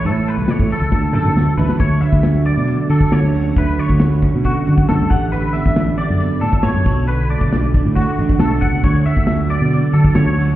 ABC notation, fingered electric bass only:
X:1
M:4/4
L:1/16
Q:1/4=136
K:D
V:1 name="Fingered electric bass" clef=bass
A,,3 C,, z A,, z C,, D,,2 F,,2 D,, z A,,, z | D,,2 z D,,4 B,,2 z D, z D, D,,3 | D,,2 z D,,4 B,,2 z D, z D, D,, A,,,2- | A,,,3 A,,,4 F,,2 z A,, z A,, F,, B,,,2- |
B,,,3 B,,,4 A,,2 z A,,,2 B,,,2 C,,2 | D,,2 z D,,4 B,,2 z D, z D, D,,3 |]